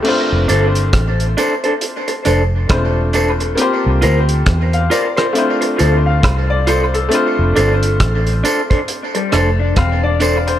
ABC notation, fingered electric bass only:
X:1
M:4/4
L:1/16
Q:"Swing 16ths" 1/4=68
K:F
V:1 name="Fingered electric bass" clef=bass
z F,,, G,,,2 A,,,2 z4 F,,,2 E,,,4 | z C,, D,,2 E,,2 z4 D,,2 C,,4 | z F,,, G,,,2 A,,,2 z4 F,,,2 E,,,4 |]